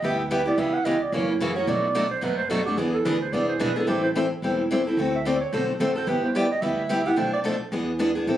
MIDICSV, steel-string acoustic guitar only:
0, 0, Header, 1, 2, 480
1, 0, Start_track
1, 0, Key_signature, 1, "major"
1, 0, Tempo, 274977
1, 1004, Time_signature, 4, 2, 24, 8
1, 14618, End_track
2, 0, Start_track
2, 0, Title_t, "Steel-string acoustic guitar"
2, 0, Program_c, 0, 25
2, 62, Note_on_c, 0, 55, 60
2, 73, Note_on_c, 0, 59, 64
2, 79, Note_on_c, 0, 64, 61
2, 79, Note_on_c, 0, 67, 74
2, 379, Note_off_c, 0, 55, 0
2, 384, Note_off_c, 0, 59, 0
2, 387, Note_off_c, 0, 64, 0
2, 388, Note_off_c, 0, 67, 0
2, 536, Note_on_c, 0, 55, 83
2, 540, Note_on_c, 0, 59, 82
2, 549, Note_on_c, 0, 64, 85
2, 552, Note_on_c, 0, 67, 86
2, 712, Note_off_c, 0, 55, 0
2, 714, Note_off_c, 0, 59, 0
2, 719, Note_off_c, 0, 64, 0
2, 720, Note_off_c, 0, 67, 0
2, 796, Note_on_c, 0, 67, 52
2, 817, Note_on_c, 0, 64, 47
2, 834, Note_on_c, 0, 59, 43
2, 992, Note_off_c, 0, 67, 0
2, 996, Note_off_c, 0, 59, 0
2, 1002, Note_off_c, 0, 64, 0
2, 1006, Note_on_c, 0, 49, 68
2, 1010, Note_on_c, 0, 52, 59
2, 1016, Note_on_c, 0, 59, 67
2, 1020, Note_on_c, 0, 61, 65
2, 1026, Note_on_c, 0, 67, 74
2, 1331, Note_off_c, 0, 49, 0
2, 1333, Note_off_c, 0, 52, 0
2, 1336, Note_off_c, 0, 59, 0
2, 1338, Note_off_c, 0, 61, 0
2, 1341, Note_off_c, 0, 67, 0
2, 1485, Note_on_c, 0, 49, 86
2, 1488, Note_on_c, 0, 52, 86
2, 1501, Note_on_c, 0, 59, 86
2, 1510, Note_on_c, 0, 61, 90
2, 1510, Note_on_c, 0, 67, 90
2, 1667, Note_off_c, 0, 49, 0
2, 1669, Note_off_c, 0, 52, 0
2, 1675, Note_off_c, 0, 59, 0
2, 1679, Note_off_c, 0, 67, 0
2, 1680, Note_off_c, 0, 61, 0
2, 1975, Note_on_c, 0, 49, 58
2, 1977, Note_on_c, 0, 52, 64
2, 1988, Note_on_c, 0, 58, 63
2, 1994, Note_on_c, 0, 66, 70
2, 1995, Note_on_c, 0, 61, 71
2, 2296, Note_off_c, 0, 49, 0
2, 2297, Note_off_c, 0, 52, 0
2, 2303, Note_off_c, 0, 58, 0
2, 2306, Note_off_c, 0, 61, 0
2, 2306, Note_off_c, 0, 66, 0
2, 2452, Note_on_c, 0, 49, 86
2, 2464, Note_on_c, 0, 52, 86
2, 2465, Note_on_c, 0, 58, 86
2, 2472, Note_on_c, 0, 61, 82
2, 2481, Note_on_c, 0, 66, 88
2, 2631, Note_off_c, 0, 49, 0
2, 2637, Note_off_c, 0, 52, 0
2, 2638, Note_off_c, 0, 58, 0
2, 2641, Note_off_c, 0, 61, 0
2, 2645, Note_off_c, 0, 66, 0
2, 2717, Note_on_c, 0, 66, 60
2, 2734, Note_on_c, 0, 61, 50
2, 2760, Note_on_c, 0, 58, 46
2, 2913, Note_off_c, 0, 66, 0
2, 2920, Note_on_c, 0, 47, 65
2, 2922, Note_off_c, 0, 61, 0
2, 2929, Note_off_c, 0, 58, 0
2, 2932, Note_on_c, 0, 54, 64
2, 2936, Note_on_c, 0, 57, 67
2, 2939, Note_on_c, 0, 66, 66
2, 2942, Note_on_c, 0, 62, 65
2, 3249, Note_off_c, 0, 47, 0
2, 3255, Note_off_c, 0, 54, 0
2, 3257, Note_off_c, 0, 57, 0
2, 3259, Note_off_c, 0, 66, 0
2, 3260, Note_off_c, 0, 62, 0
2, 3399, Note_on_c, 0, 47, 87
2, 3406, Note_on_c, 0, 54, 90
2, 3410, Note_on_c, 0, 57, 90
2, 3417, Note_on_c, 0, 62, 86
2, 3425, Note_on_c, 0, 66, 94
2, 3585, Note_off_c, 0, 47, 0
2, 3589, Note_off_c, 0, 54, 0
2, 3591, Note_off_c, 0, 57, 0
2, 3594, Note_off_c, 0, 62, 0
2, 3598, Note_off_c, 0, 66, 0
2, 3865, Note_on_c, 0, 47, 65
2, 3879, Note_on_c, 0, 57, 70
2, 3881, Note_on_c, 0, 54, 69
2, 3891, Note_on_c, 0, 62, 71
2, 3892, Note_on_c, 0, 66, 65
2, 4202, Note_off_c, 0, 47, 0
2, 4209, Note_off_c, 0, 57, 0
2, 4210, Note_off_c, 0, 54, 0
2, 4215, Note_off_c, 0, 62, 0
2, 4216, Note_off_c, 0, 66, 0
2, 4360, Note_on_c, 0, 47, 85
2, 4370, Note_on_c, 0, 54, 78
2, 4375, Note_on_c, 0, 62, 99
2, 4378, Note_on_c, 0, 57, 79
2, 4379, Note_on_c, 0, 66, 90
2, 4546, Note_off_c, 0, 47, 0
2, 4551, Note_off_c, 0, 54, 0
2, 4554, Note_off_c, 0, 62, 0
2, 4555, Note_off_c, 0, 57, 0
2, 4556, Note_off_c, 0, 66, 0
2, 4655, Note_on_c, 0, 66, 55
2, 4676, Note_on_c, 0, 62, 56
2, 4693, Note_on_c, 0, 57, 44
2, 4843, Note_off_c, 0, 66, 0
2, 4851, Note_on_c, 0, 52, 68
2, 4853, Note_off_c, 0, 62, 0
2, 4857, Note_off_c, 0, 57, 0
2, 4864, Note_on_c, 0, 59, 57
2, 4871, Note_on_c, 0, 62, 66
2, 4876, Note_on_c, 0, 68, 70
2, 5176, Note_off_c, 0, 52, 0
2, 5182, Note_off_c, 0, 59, 0
2, 5186, Note_off_c, 0, 62, 0
2, 5188, Note_off_c, 0, 68, 0
2, 5330, Note_on_c, 0, 52, 86
2, 5333, Note_on_c, 0, 59, 91
2, 5346, Note_on_c, 0, 62, 85
2, 5355, Note_on_c, 0, 68, 87
2, 5511, Note_off_c, 0, 52, 0
2, 5513, Note_off_c, 0, 59, 0
2, 5519, Note_off_c, 0, 62, 0
2, 5524, Note_off_c, 0, 68, 0
2, 5817, Note_on_c, 0, 52, 60
2, 5821, Note_on_c, 0, 59, 64
2, 5831, Note_on_c, 0, 62, 65
2, 5839, Note_on_c, 0, 68, 72
2, 6139, Note_off_c, 0, 52, 0
2, 6141, Note_off_c, 0, 59, 0
2, 6146, Note_off_c, 0, 62, 0
2, 6149, Note_off_c, 0, 68, 0
2, 6277, Note_on_c, 0, 52, 85
2, 6287, Note_on_c, 0, 59, 82
2, 6293, Note_on_c, 0, 62, 88
2, 6296, Note_on_c, 0, 68, 89
2, 6465, Note_off_c, 0, 52, 0
2, 6470, Note_off_c, 0, 59, 0
2, 6473, Note_off_c, 0, 62, 0
2, 6474, Note_off_c, 0, 68, 0
2, 6561, Note_on_c, 0, 68, 63
2, 6577, Note_on_c, 0, 62, 55
2, 6593, Note_on_c, 0, 59, 48
2, 6750, Note_on_c, 0, 52, 60
2, 6751, Note_off_c, 0, 59, 0
2, 6756, Note_on_c, 0, 55, 59
2, 6757, Note_off_c, 0, 68, 0
2, 6758, Note_on_c, 0, 60, 66
2, 6762, Note_off_c, 0, 62, 0
2, 6769, Note_on_c, 0, 64, 70
2, 6772, Note_on_c, 0, 69, 68
2, 7085, Note_off_c, 0, 52, 0
2, 7088, Note_off_c, 0, 55, 0
2, 7089, Note_off_c, 0, 60, 0
2, 7094, Note_off_c, 0, 64, 0
2, 7096, Note_off_c, 0, 69, 0
2, 7252, Note_on_c, 0, 52, 79
2, 7257, Note_on_c, 0, 55, 87
2, 7263, Note_on_c, 0, 60, 96
2, 7272, Note_on_c, 0, 64, 90
2, 7279, Note_on_c, 0, 69, 88
2, 7432, Note_off_c, 0, 52, 0
2, 7435, Note_off_c, 0, 55, 0
2, 7438, Note_off_c, 0, 60, 0
2, 7442, Note_off_c, 0, 64, 0
2, 7446, Note_off_c, 0, 69, 0
2, 7736, Note_on_c, 0, 52, 63
2, 7748, Note_on_c, 0, 55, 65
2, 7751, Note_on_c, 0, 64, 70
2, 7753, Note_on_c, 0, 60, 68
2, 7762, Note_on_c, 0, 69, 64
2, 8058, Note_off_c, 0, 52, 0
2, 8064, Note_off_c, 0, 55, 0
2, 8066, Note_off_c, 0, 64, 0
2, 8067, Note_off_c, 0, 60, 0
2, 8071, Note_off_c, 0, 69, 0
2, 8216, Note_on_c, 0, 52, 94
2, 8227, Note_on_c, 0, 55, 91
2, 8232, Note_on_c, 0, 60, 89
2, 8235, Note_on_c, 0, 64, 90
2, 8242, Note_on_c, 0, 69, 99
2, 8394, Note_off_c, 0, 52, 0
2, 8400, Note_off_c, 0, 55, 0
2, 8402, Note_off_c, 0, 60, 0
2, 8404, Note_off_c, 0, 64, 0
2, 8407, Note_off_c, 0, 69, 0
2, 8501, Note_on_c, 0, 69, 63
2, 8520, Note_on_c, 0, 64, 58
2, 8532, Note_on_c, 0, 60, 47
2, 8686, Note_off_c, 0, 69, 0
2, 8688, Note_off_c, 0, 60, 0
2, 8696, Note_off_c, 0, 64, 0
2, 8699, Note_on_c, 0, 50, 58
2, 8703, Note_on_c, 0, 57, 62
2, 8709, Note_on_c, 0, 60, 65
2, 8712, Note_on_c, 0, 66, 64
2, 8723, Note_on_c, 0, 69, 66
2, 9019, Note_off_c, 0, 50, 0
2, 9021, Note_off_c, 0, 57, 0
2, 9024, Note_off_c, 0, 60, 0
2, 9026, Note_off_c, 0, 66, 0
2, 9031, Note_off_c, 0, 69, 0
2, 9171, Note_on_c, 0, 50, 92
2, 9184, Note_on_c, 0, 57, 91
2, 9187, Note_on_c, 0, 60, 95
2, 9195, Note_on_c, 0, 69, 102
2, 9198, Note_on_c, 0, 66, 86
2, 9351, Note_off_c, 0, 50, 0
2, 9358, Note_off_c, 0, 57, 0
2, 9360, Note_off_c, 0, 60, 0
2, 9363, Note_off_c, 0, 69, 0
2, 9365, Note_off_c, 0, 66, 0
2, 9648, Note_on_c, 0, 50, 72
2, 9661, Note_on_c, 0, 57, 70
2, 9663, Note_on_c, 0, 66, 78
2, 9664, Note_on_c, 0, 60, 75
2, 9669, Note_on_c, 0, 69, 78
2, 9973, Note_off_c, 0, 50, 0
2, 9979, Note_off_c, 0, 57, 0
2, 9980, Note_off_c, 0, 66, 0
2, 9981, Note_off_c, 0, 60, 0
2, 9984, Note_off_c, 0, 69, 0
2, 10129, Note_on_c, 0, 50, 95
2, 10135, Note_on_c, 0, 57, 90
2, 10135, Note_on_c, 0, 60, 99
2, 10143, Note_on_c, 0, 66, 90
2, 10144, Note_on_c, 0, 69, 92
2, 10310, Note_off_c, 0, 50, 0
2, 10313, Note_off_c, 0, 57, 0
2, 10313, Note_off_c, 0, 60, 0
2, 10317, Note_off_c, 0, 66, 0
2, 10318, Note_off_c, 0, 69, 0
2, 10398, Note_on_c, 0, 69, 68
2, 10426, Note_on_c, 0, 66, 53
2, 10436, Note_on_c, 0, 60, 55
2, 10593, Note_off_c, 0, 69, 0
2, 10593, Note_on_c, 0, 55, 62
2, 10595, Note_off_c, 0, 60, 0
2, 10602, Note_on_c, 0, 59, 69
2, 10603, Note_off_c, 0, 66, 0
2, 10610, Note_on_c, 0, 64, 70
2, 10620, Note_on_c, 0, 67, 70
2, 10925, Note_off_c, 0, 55, 0
2, 10930, Note_off_c, 0, 59, 0
2, 10934, Note_off_c, 0, 64, 0
2, 10939, Note_off_c, 0, 67, 0
2, 11085, Note_on_c, 0, 55, 90
2, 11094, Note_on_c, 0, 59, 88
2, 11101, Note_on_c, 0, 64, 98
2, 11106, Note_on_c, 0, 67, 112
2, 11267, Note_off_c, 0, 55, 0
2, 11272, Note_off_c, 0, 59, 0
2, 11276, Note_off_c, 0, 64, 0
2, 11278, Note_off_c, 0, 67, 0
2, 11556, Note_on_c, 0, 55, 76
2, 11570, Note_on_c, 0, 59, 70
2, 11573, Note_on_c, 0, 64, 75
2, 11580, Note_on_c, 0, 67, 79
2, 11886, Note_off_c, 0, 55, 0
2, 11893, Note_off_c, 0, 59, 0
2, 11895, Note_off_c, 0, 64, 0
2, 11898, Note_off_c, 0, 67, 0
2, 12032, Note_on_c, 0, 55, 90
2, 12038, Note_on_c, 0, 59, 85
2, 12046, Note_on_c, 0, 64, 111
2, 12056, Note_on_c, 0, 67, 94
2, 12220, Note_off_c, 0, 55, 0
2, 12224, Note_off_c, 0, 59, 0
2, 12228, Note_off_c, 0, 64, 0
2, 12232, Note_off_c, 0, 67, 0
2, 12319, Note_on_c, 0, 67, 66
2, 12342, Note_on_c, 0, 64, 54
2, 12361, Note_on_c, 0, 59, 56
2, 12504, Note_on_c, 0, 47, 74
2, 12505, Note_off_c, 0, 59, 0
2, 12511, Note_off_c, 0, 64, 0
2, 12512, Note_on_c, 0, 57, 73
2, 12513, Note_off_c, 0, 67, 0
2, 12516, Note_on_c, 0, 53, 62
2, 12518, Note_on_c, 0, 62, 71
2, 12531, Note_on_c, 0, 69, 74
2, 12840, Note_off_c, 0, 47, 0
2, 12844, Note_off_c, 0, 57, 0
2, 12846, Note_off_c, 0, 53, 0
2, 12847, Note_off_c, 0, 62, 0
2, 12853, Note_off_c, 0, 69, 0
2, 12984, Note_on_c, 0, 47, 95
2, 12995, Note_on_c, 0, 53, 92
2, 13001, Note_on_c, 0, 57, 91
2, 13004, Note_on_c, 0, 62, 92
2, 13011, Note_on_c, 0, 69, 98
2, 13176, Note_off_c, 0, 47, 0
2, 13181, Note_off_c, 0, 53, 0
2, 13184, Note_off_c, 0, 57, 0
2, 13186, Note_off_c, 0, 62, 0
2, 13190, Note_off_c, 0, 69, 0
2, 13480, Note_on_c, 0, 52, 72
2, 13488, Note_on_c, 0, 59, 75
2, 13496, Note_on_c, 0, 62, 73
2, 13500, Note_on_c, 0, 68, 72
2, 13807, Note_off_c, 0, 52, 0
2, 13812, Note_off_c, 0, 59, 0
2, 13816, Note_off_c, 0, 62, 0
2, 13817, Note_off_c, 0, 68, 0
2, 13948, Note_on_c, 0, 52, 83
2, 13955, Note_on_c, 0, 59, 89
2, 13963, Note_on_c, 0, 62, 102
2, 13970, Note_on_c, 0, 68, 88
2, 14138, Note_off_c, 0, 52, 0
2, 14141, Note_off_c, 0, 59, 0
2, 14145, Note_off_c, 0, 62, 0
2, 14149, Note_off_c, 0, 68, 0
2, 14230, Note_on_c, 0, 68, 63
2, 14249, Note_on_c, 0, 62, 57
2, 14264, Note_on_c, 0, 59, 57
2, 14428, Note_off_c, 0, 68, 0
2, 14438, Note_off_c, 0, 62, 0
2, 14441, Note_on_c, 0, 52, 60
2, 14445, Note_off_c, 0, 59, 0
2, 14449, Note_on_c, 0, 55, 59
2, 14453, Note_on_c, 0, 60, 62
2, 14456, Note_on_c, 0, 64, 65
2, 14466, Note_on_c, 0, 69, 67
2, 14618, Note_off_c, 0, 52, 0
2, 14618, Note_off_c, 0, 55, 0
2, 14618, Note_off_c, 0, 60, 0
2, 14618, Note_off_c, 0, 64, 0
2, 14618, Note_off_c, 0, 69, 0
2, 14618, End_track
0, 0, End_of_file